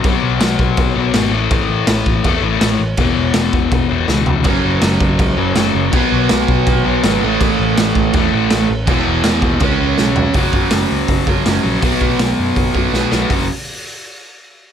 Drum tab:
CC |x-x-x-x-|x-x-x-x-|x-x-x---|x-x-x-x-|
HH |--------|--------|--------|--------|
SD |--o---o-|--o---o-|--o---o-|--o---o-|
FT |--------|--------|-------o|--------|
BD |o--oo---|o--oo---|o--oo---|o--oo---|

CC |x-x-x-x-|x-x-x-x-|x-x-x---|--------|
HH |--------|--------|--------|o-o-o-o-|
SD |--o---o-|--o---o-|--o---o-|--o---o-|
FT |--------|--------|-------o|--------|
BD |o--oo---|o--oo---|o--oo---|oo--oo--|

CC |--------|--------|
HH |o-o-o---|o-------|
SD |--o---oo|--------|
FT |--------|--------|
BD |oo--oo--|o-------|